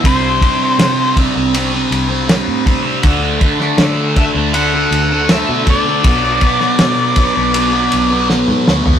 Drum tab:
RD |x-x-x-x-x-x-x-x-|x-x-x-x-x-x-x-x-|x-x-x-x-x-x-----|
SD |----o-------o---|---oo-------o---|---oo-------o-o-|
T2 |----------------|----------------|-------------o--|
FT |----------------|----------------|---------------o|
BD |o-o---o-------o-|o-o---o-------o-|o-o---o---------|